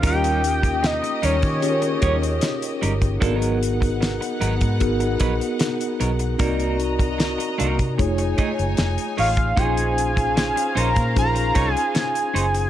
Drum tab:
HH |xxxxxxxxxxxxxxxx|xxxxxxxxxxxxxxxx|xxxxxxxxxxxxxxox|xxxxxxxxxxxxxxxx|
SD |----o-------o---|----o-------o---|----o-------o---|----o-------o---|
BD |o--o---o--o----o|o--o---oo-o-----|o--o---oo-o----o|o--o---oo-o-----|